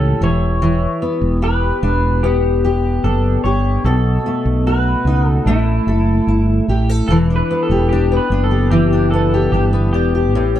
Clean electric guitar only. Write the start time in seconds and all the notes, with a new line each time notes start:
Already playing: A4
0.24 C#5
1.44 B4
2.23 G4
3.04 A4
3.44 C#5
3.85 A4
4.67 B4
5.27 A4
5.47 E4
7.08 A4
7.36 B4
7.63 A4
7.89 G4
8.17 B4
8.44 A4
8.71 G4
9.11 A4
9.52 G4
9.93 G4